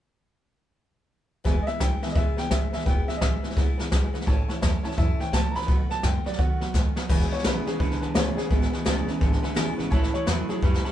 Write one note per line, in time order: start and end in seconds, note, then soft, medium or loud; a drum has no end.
1.44 1.60 E1 loud
1.44 1.67 E2 medium
1.44 1.65 E2 medium
1.44 1.67 B2 medium
1.44 1.65 B2 medium
1.44 1.67 E3 medium
1.44 1.67 G#3 medium
1.44 1.67 B3 medium
1.44 1.65 E4 medium
1.44 1.58 B4 loud
1.44 1.58 E5 loud
1.44 1.59 G#5 loud
1.44 kick medium
1.44 snare soft
1.62 1.80 E4 soft
1.62 1.65 D#5 medium
1.67 1.79 E2 medium
1.67 1.79 B2 medium
1.67 1.78 E3 soft
1.67 1.79 G#3 soft
1.67 1.81 B3 soft
1.67 1.75 B4 medium
1.67 1.80 E5 loud
1.67 1.75 E5 medium
1.67 1.76 G#5 medium
1.67 snare soft
1.79 1.95 B1 medium
1.79 2.00 E2 medium
1.79 2.01 C#3 medium
1.79 2.02 E3 medium
1.79 2.03 G#3 medium
1.79 2.02 B3 medium
1.79 2.01 E4 medium
1.79 1.93 B4 medium
1.79 1.94 E5 medium
1.79 2.02 G5 medium
1.79 1.94 G#5 medium
1.79 kick medium
1.79 snare loud
1.79 hi-hat pedal medium
2.02 2.14 E2 medium
2.02 2.14 B2 medium
2.02 2.15 E3 soft
2.02 2.16 G#3 soft
2.02 2.16 B3 medium
2.02 2.15 E4 soft
2.02 2.10 B4 medium
2.02 2.15 E5 medium
2.02 2.10 E5 medium
2.02 2.11 G#5 medium
2.02 snare soft
2.09 2.14 D#5 medium
2.09 snare soft
2.15 2.30 C#2 medium
2.15 2.37 E2 medium
2.15 2.36 E2 medium
2.15 2.38 B2 medium
2.15 2.36 B2 medium
2.15 2.38 E3 medium
2.15 2.38 G#3 medium
2.15 2.37 B3 medium
2.15 2.36 E4 medium
2.15 2.29 B4 medium
2.15 2.29 E5 medium
2.15 2.37 E5 medium
2.15 2.29 G#5 medium
2.15 kick loud
2.15 snare soft
2.37 2.50 E2 medium
2.37 2.50 B2 medium
2.37 2.49 E3 soft
2.37 2.51 G#3 soft
2.37 2.51 B3 soft
2.37 2.50 E4 soft
2.37 2.45 B4 medium
2.37 2.45 E5 medium
2.37 2.51 G5 medium
2.37 2.46 G#5 medium
2.37 snare soft
2.50 2.66 G#1 medium
2.50 2.71 E2 medium
2.50 2.71 C#3 medium
2.50 2.73 E3 medium
2.50 2.73 G#3 medium
2.50 2.73 B3 medium
2.50 2.64 B4 medium
2.50 2.64 E5 medium
2.50 2.72 E5 medium
2.50 2.64 G#5 medium
2.50 kick medium
2.50 snare loud
2.50 hi-hat pedal medium
2.54 2.72 E4 medium
2.72 2.82 B1 medium
2.72 2.85 E2 medium
2.72 2.85 B2 medium
2.72 2.86 E3 soft
2.72 2.86 G#3 soft
2.72 2.86 B3 medium
2.72 2.86 E4 soft
2.72 2.80 B4 medium
2.72 2.81 E5 medium
2.72 2.86 E5 medium
2.72 2.81 G#5 medium
2.72 snare soft
2.80 snare soft
2.85 3.01 E1 medium
2.85 3.08 E2 medium
2.85 3.06 E2 medium
2.85 3.08 B2 medium
2.85 3.06 B2 medium
2.85 3.09 E3 medium
2.85 3.09 G#3 medium
2.85 3.08 B3 medium
2.85 3.06 E4 medium
2.85 2.99 B4 loud
2.85 2.99 E5 medium
2.85 3.00 F#5 medium
2.85 3.08 G5 medium
2.85 kick loud
2.85 snare soft
3.07 3.20 E2 medium
3.07 3.20 B2 medium
3.07 3.19 E3 soft
3.07 3.20 G#3 soft
3.07 3.21 B3 soft
3.07 3.21 E4 soft
3.07 3.16 B4 medium
3.07 3.16 E5 medium
3.07 3.20 E5 medium
3.07 3.16 G#5 medium
3.07 snare soft
3.17 3.43 E3 medium
3.17 3.34 B4 medium
3.17 3.20 D#5 medium
3.17 3.34 E5 medium
3.21 3.36 B1 medium
3.21 3.42 E2 medium
3.21 3.42 C#3 medium
3.21 3.44 G#3 medium
3.21 3.43 B3 medium
3.21 3.42 E4 medium
3.21 3.90 E5 medium
3.21 3.35 G#5 medium
3.21 kick medium
3.21 snare loud
3.21 hi-hat pedal medium
3.43 3.55 E2 medium
3.43 3.55 B2 medium
3.43 3.56 E3 soft
3.43 3.57 G#3 soft
3.43 3.57 B3 medium
3.43 3.56 E4 soft
3.43 3.51 B4 medium
3.43 3.51 E5 medium
3.43 3.52 G#5 medium
3.43 snare soft
3.50 snare soft
3.56 3.71 C#2 medium
3.56 3.79 E2 medium
3.56 3.77 E2 medium
3.56 3.79 B2 medium
3.56 3.77 B2 medium
3.56 3.79 E3 medium
3.56 3.79 G#3 medium
3.56 3.78 B3 medium
3.56 3.77 E4 medium
3.56 3.70 B4 medium
3.56 3.70 E5 medium
3.56 3.70 F#5 medium
3.56 kick loud
3.56 snare soft
3.78 3.87 B1 medium
3.78 3.90 E2 medium
3.78 3.91 B2 medium
3.78 3.89 E3 soft
3.78 3.90 G#3 soft
3.78 3.91 B3 soft
3.78 3.91 E4 medium
3.78 3.86 B4 medium
3.78 3.87 E5 medium
3.78 3.87 G#5 medium
3.78 snare soft
3.90 4.07 B1 medium
3.90 4.12 E2 medium
3.90 4.12 C#3 medium
3.90 4.13 E3 medium
3.90 4.14 G#3 medium
3.90 4.13 B3 medium
3.90 4.12 E4 medium
3.90 4.05 B4 medium
3.90 4.05 E5 medium
3.90 4.05 G#5 loud
3.90 kick medium
3.90 snare loud
3.90 hi-hat pedal medium
4.13 4.26 E2 medium
4.13 4.26 B2 medium
4.13 4.26 E3 soft
4.13 4.27 G#3 soft
4.13 4.27 B3 medium
4.13 4.26 E4 medium
4.13 4.22 B4 medium
4.13 4.22 E5 medium
4.13 4.22 F#5 loud
4.13 snare soft
4.21 snare soft
4.26 4.42 A1 medium
4.26 4.49 A2 medium
4.26 4.47 A2 medium
4.26 4.49 E3 medium
4.26 4.47 E3 medium
4.26 4.50 A3 medium
4.26 4.49 C#4 loud
4.26 4.47 E4 medium
4.26 4.40 C#5 loud
4.26 4.40 E5 medium
4.26 4.41 A5 loud
4.26 kick loud
4.26 snare soft
4.48 4.61 A2 medium
4.48 4.61 E3 medium
4.48 4.62 A3 soft
4.48 4.63 C#4 soft
4.48 4.62 E4 medium
4.48 4.57 C#5 medium
4.48 4.57 E5 medium
4.48 4.57 A5 loud
4.48 muted upright bass stroke medium
4.48 snare soft
4.61 4.77 E2 medium
4.61 4.82 A2 medium
4.61 4.84 E3 medium
4.61 4.83 F#3 medium
4.61 4.85 A3 medium
4.61 4.85 C#4 medium
4.61 4.83 E4 medium
4.61 4.75 C#5 medium
4.61 4.75 E5 medium
4.61 4.76 A5 loud
4.61 kick medium
4.61 snare loud
4.61 hi-hat pedal medium
4.83 4.96 A2 medium
4.83 4.97 E3 medium
4.83 4.97 A3 soft
4.83 4.97 C#4 medium
4.83 4.97 E4 medium
4.83 4.92 C#5 medium
4.83 4.92 E5 medium
4.83 4.93 A5 loud
4.83 muted upright bass stroke medium
4.83 snare soft
4.91 snare soft
4.96 5.13 F#2 medium
4.96 5.19 A2 medium
4.96 5.18 A2 medium
4.96 5.20 E3 medium
4.96 5.18 E3 loud
4.96 5.20 A3 medium
4.96 5.20 C#4 medium
4.96 5.18 E4 medium
4.96 5.10 C#5 medium
4.96 5.11 E5 medium
4.96 5.19 E5 medium
4.96 5.11 A5 loud
4.96 kick loud
4.96 snare soft
5.19 5.32 A2 medium
5.19 5.32 E3 medium
5.19 5.32 A3 soft
5.19 5.33 C#4 soft
5.19 5.32 E4 soft
5.19 5.28 C#5 medium
5.19 5.28 E5 medium
5.19 5.33 G5 medium
5.19 5.28 G#5 medium
5.19 muted upright bass stroke medium
5.19 snare soft
5.31 5.48 C#2 medium
5.31 5.53 A2 medium
5.31 5.54 E3 medium
5.31 5.53 F#3 medium
5.31 5.55 A3 medium
5.31 5.55 C#4 medium
5.31 5.53 E4 medium
5.31 5.46 C#5 medium
5.31 5.46 E5 medium
5.31 5.46 A5 medium
5.31 5.55 A5 medium
5.31 kick medium
5.31 snare loud
5.31 hi-hat pedal medium
5.51 5.64 A#1 medium
5.51 5.67 A2 medium
5.51 5.68 E4 soft
5.51 5.63 C#5 medium
5.51 5.63 E5 medium
5.51 5.53 A#5 medium
5.51 snare soft
5.55 5.67 E3 medium
5.55 5.67 A3 soft
5.55 5.68 C#4 soft
5.55 5.63 A5 medium
5.55 5.90 B5 loud
5.62 snare soft
5.67 5.83 B1 loud
5.67 5.90 B2 medium
5.67 5.88 B2 medium
5.67 5.90 D#3 medium
5.67 5.89 F#3 medium
5.67 5.91 A3 medium
5.67 5.90 B3 medium
5.67 5.88 F#4 medium
5.67 5.81 B4 medium
5.67 5.81 D#5 medium
5.67 5.81 F#5 loud
5.67 kick loud
5.67 snare soft
5.89 6.02 B2 medium
5.89 6.02 F#3 medium
5.89 6.02 A3 soft
5.89 6.03 B3 soft
5.89 6.03 F#4 soft
5.89 5.98 B4 medium
5.89 5.98 D#5 medium
5.89 5.98 F#5 medium
5.89 6.03 A5 loud
5.89 snare soft
6.02 6.18 F#2 medium
6.02 6.24 B2 medium
6.02 6.25 D#3 medium
6.02 6.24 G#3 medium
6.02 6.25 A3 medium
6.02 6.25 B3 medium
6.02 6.23 F#4 medium
6.02 6.16 B4 medium
6.02 6.17 D#5 medium
6.02 6.17 F#5 medium
6.02 6.25 G5 medium
6.02 kick medium
6.02 snare loud
6.02 hi-hat pedal medium
6.24 6.37 B2 medium
6.24 6.38 F#3 medium
6.24 6.38 A3 soft
6.24 6.39 B3 soft
6.24 6.38 F#4 medium
6.24 6.33 B4 medium
6.24 6.39 D5 medium
6.24 6.34 D#5 medium
6.24 6.34 F#5 medium
6.24 muted upright bass stroke medium
6.24 snare soft
6.32 snare soft
6.38 6.61 B2 medium
6.38 6.59 B2 medium
6.38 6.61 D#3 medium
6.38 6.59 F#3 loud
6.38 6.61 A3 medium
6.38 6.61 B3 medium
6.38 6.73 F#4 medium
6.38 6.59 F#4 medium
6.38 6.51 B4 medium
6.38 6.52 D#5 medium
6.38 6.52 F#5 medium
6.38 kick loud
6.38 snare soft
6.60 6.69 F#2 medium
6.60 6.73 B2 medium
6.60 6.73 F#3 medium
6.60 6.73 A3 soft
6.60 6.74 B3 soft
6.60 6.73 F#4 soft
6.60 6.69 B4 medium
6.60 6.69 D#5 medium
6.60 6.69 F#5 medium
6.60 snare soft
6.73 6.89 D#2 medium
6.73 6.94 B2 medium
6.73 6.96 D#3 medium
6.73 6.94 G#3 loud
6.73 6.96 A3 medium
6.73 6.96 B3 medium
6.73 6.94 F#4 medium
6.73 6.87 B4 medium
6.73 6.88 D#5 medium
6.73 6.88 G#5 medium
6.73 kick medium
6.73 snare medium
6.73 hi-hat pedal medium
6.95 7.08 B2 medium
6.95 7.08 F#3 medium
6.95 7.09 A3 soft
6.95 7.10 B3 soft
6.95 7.09 F#4 medium
6.95 7.04 B4 medium
6.95 7.04 D#5 medium
6.95 7.05 F#5 loud
6.95 muted upright bass stroke medium
6.95 snare medium
7.09 7.25 E1 loud
7.09 7.31 E2 medium
7.09 7.29 E2 medium
7.09 7.31 B2 loud
7.09 7.29 B2 medium
7.09 7.32 E3 loud
7.09 7.32 G#3 medium
7.09 7.31 B3 medium
7.09 7.29 E4 medium
7.09 7.23 B4 loud
7.09 7.23 E5 loud
7.09 7.23 G#5 loud
7.09 kick loud
7.09 snare soft
7.09 crash loud
7.21 snare soft
7.31 7.43 E2 medium
7.31 7.44 B2 medium
7.31 7.44 E3 soft
7.31 7.44 G#3 soft
7.31 7.44 B3 soft
7.31 7.44 E4 medium
7.31 7.39 B4 medium
7.31 7.45 C#5 medium
7.31 7.40 E5 medium
7.31 7.40 G#5 medium
7.31 muted upright bass stroke medium
7.31 snare soft
7.38 snare soft
7.44 7.60 B1 medium
7.44 7.66 E2 loud
7.44 7.64 E2 medium
7.44 7.66 B2 medium
7.44 7.65 C#3 medium
7.44 7.67 E3 medium
7.44 7.67 G#3 medium
7.44 7.66 B3 medium
7.44 7.64 E4 medium
7.44 7.58 B4 medium
7.44 7.66 B4 medium
7.44 7.58 E5 medium
7.44 snare loud
7.44 hi-hat pedal medium
7.65 7.78 E2 medium
7.65 7.79 C#3 medium
7.65 7.77 E3 soft
7.65 7.79 G#3 soft
7.65 7.80 B3 soft
7.65 7.79 E4 medium
7.65 7.80 G#4 medium
7.65 7.74 B4 medium
7.65 7.75 E5 medium
7.65 7.75 G#5 medium
7.65 muted upright bass stroke medium
7.65 snare soft
7.78 7.96 C#2 medium
7.78 8.00 E2 medium
7.78 8.00 D3 medium
7.78 8.01 E3 medium
7.78 8.02 G#3 medium
7.78 8.01 B3 medium
7.78 8.00 E4 medium
7.78 7.93 B4 medium
7.78 8.14 B4 medium
7.78 7.93 E5 medium
7.78 7.94 G#5 medium
7.78 kick loud
7.78 snare soft
7.91 snare soft
8.01 8.14 E2 medium
8.01 8.14 D3 medium
8.01 8.14 E3 soft
8.01 8.14 G#3 soft
8.01 8.15 B3 soft
8.01 8.14 E4 soft
8.01 8.09 B4 medium
8.01 8.10 E5 medium
8.01 8.10 G#5 loud
8.01 muted upright bass stroke medium
8.01 snare soft
8.14 8.31 C#2 medium
8.14 8.37 E2 medium
8.14 8.35 E2 medium
8.14 8.37 B2 medium
8.14 8.35 C#3 loud
8.14 8.37 E3 medium
8.14 8.38 G#3 medium
8.14 8.37 B3 loud
8.14 8.35 E4 loud
8.14 8.28 B4 medium
8.14 8.36 C#5 medium
8.14 8.28 E5 medium
8.14 8.29 G#5 medium
8.14 snare loud
8.14 hi-hat pedal medium
8.37 8.49 E2 medium
8.37 8.49 C#3 medium
8.37 8.50 E3 soft
8.37 8.50 G#3 soft
8.37 8.50 B3 soft
8.37 8.50 E4 medium
8.37 8.50 G#4 medium
8.37 8.45 B4 medium
8.37 8.45 E5 medium
8.37 8.46 G#5 medium
8.37 snare soft
8.49 8.66 G#1 loud
8.49 8.72 E2 medium
8.49 8.71 E2 medium
8.49 8.73 B2 medium
8.49 8.71 B2 medium
8.49 8.73 E3 medium
8.49 8.73 G#3 medium
8.49 8.72 B3 medium
8.49 8.70 E4 medium
8.49 8.64 B4 medium
8.49 8.64 E5 medium
8.49 8.64 G#5 loud
8.49 kick loud
8.49 snare soft
8.62 snare soft
8.72 8.85 E2 medium
8.72 8.85 B2 medium
8.72 8.84 E3 soft
8.72 8.85 G#3 soft
8.72 8.85 B3 medium
8.72 8.85 E4 soft
8.72 8.80 B4 medium
8.72 8.80 E5 medium
8.72 8.81 G#5 loud
8.72 snare soft
8.85 9.02 C#2 medium
8.85 9.07 E2 loud
8.85 9.06 E2 medium
8.85 9.08 B2 loud
8.85 9.06 C#3 medium
8.85 9.08 E3 loud
8.85 9.07 G#3 medium
8.85 9.07 B3 loud
8.85 9.05 E4 loud
8.85 8.99 B4 medium
8.85 8.99 E5 medium
8.85 8.99 G#5 loud
8.85 snare loud
8.85 hi-hat pedal medium
9.06 9.20 E2 medium
9.06 9.20 C#3 medium
9.06 9.18 E3 soft
9.06 9.20 G#3 medium
9.06 9.21 B3 soft
9.06 9.20 E4 medium
9.06 9.15 B4 medium
9.06 9.16 E5 medium
9.06 9.16 G#5 loud
9.06 muted upright bass stroke medium
9.06 snare soft
9.20 9.37 G#1 medium
9.20 9.41 E2 medium
9.20 9.41 D3 loud
9.20 9.43 E3 medium
9.20 9.43 G#3 medium
9.20 9.42 B3 medium
9.20 9.40 E4 medium
9.20 9.34 B4 medium
9.20 9.34 E5 medium
9.20 9.35 G#5 loud
9.20 kick loud
9.20 snare soft
9.33 snare soft
9.42 9.55 E2 medium
9.42 9.55 D3 medium
9.42 9.55 E3 soft
9.42 9.55 G#3 soft
9.42 9.56 B3 medium
9.42 9.55 E4 medium
9.42 9.51 B4 medium
9.42 9.51 E5 medium
9.42 9.51 G#5 loud
9.42 snare soft
9.55 9.72 B1 medium
9.55 9.78 E2 loud
9.55 9.76 E2 medium
9.55 9.78 B2 medium
9.55 9.77 C#3 medium
9.55 9.78 E3 loud
9.55 9.78 G#3 medium
9.55 9.77 B3 loud
9.55 9.75 E4 loud
9.55 9.69 B4 loud
9.55 9.69 E5 loud
9.55 9.70 G#5 loud
9.55 snare loud
9.55 hi-hat pedal medium
9.77 9.88 G#1 medium
9.77 9.90 E2 medium
9.77 9.90 C#3 medium
9.77 9.90 E3 soft
9.77 9.91 G#3 medium
9.77 9.91 B3 medium
9.77 9.91 E4 medium
9.77 9.86 B4 medium
9.77 9.86 E5 medium
9.77 9.87 F#5 loud
9.77 snare soft
9.90 10.08 A1 loud
9.90 10.13 A2 medium
9.90 10.12 A2 medium
9.90 10.14 E3 loud
9.90 10.12 E3 medium
9.90 10.14 A3 medium
9.90 10.13 C#4 medium
9.90 10.11 E4 medium
9.90 10.04 C#5 loud
9.90 10.05 E5 loud
9.90 10.05 A5 loud
9.90 kick loud
9.90 snare soft
10.03 snare soft
10.12 10.26 A2 medium
10.12 10.26 E3 medium
10.12 10.26 A3 soft
10.12 10.27 C#4 soft
10.12 10.26 E4 soft
10.12 10.21 C#5 medium
10.12 10.27 C#5 loud
10.12 10.22 E5 medium
10.12 10.22 A5 medium
10.12 muted upright bass stroke medium
10.12 snare soft
10.26 10.43 E2 medium
10.26 10.49 A2 medium
10.26 10.47 A2 medium
10.26 10.49 E3 medium
10.26 10.47 F#3 medium
10.26 10.50 A3 medium
10.26 10.49 C#4 medium
10.26 10.47 E4 medium
10.26 10.48 B4 medium
10.26 10.40 C#5 medium
10.26 10.40 E5 medium
10.26 10.40 A5 medium
10.26 snare loud
10.26 hi-hat pedal medium
10.48 10.61 A2 medium
10.48 10.61 F#3 medium
10.48 10.61 A3 soft
10.48 10.62 C#4 soft
10.48 10.62 E4 medium
10.48 10.62 G#4 medium
10.48 10.57 C#5 medium
10.48 10.57 E5 medium
10.48 10.57 A5 medium
10.48 muted upright bass stroke medium
10.48 snare soft
10.61 10.78 F#2 medium
10.61 10.82 A2 medium
10.61 10.84 E3 medium
10.61 10.83 G3 loud
10.61 10.84 A3 medium
10.61 10.84 C#4 medium
10.61 10.83 E4 medium
10.61 10.92 B4 medium
10.61 10.75 C#5 medium
10.61 10.76 E5 medium
10.61 10.76 A5 medium
10.61 kick loud
10.61 snare soft
10.74 snare soft
10.84 10.92 A2 medium
10.84 10.92 G3 medium
10.84 10.92 A3 soft
10.84 10.92 C#4 soft
10.84 10.92 E4 soft
10.84 10.92 C#5 medium
10.84 10.92 E5 medium
10.84 10.92 A5 loud
10.84 snare soft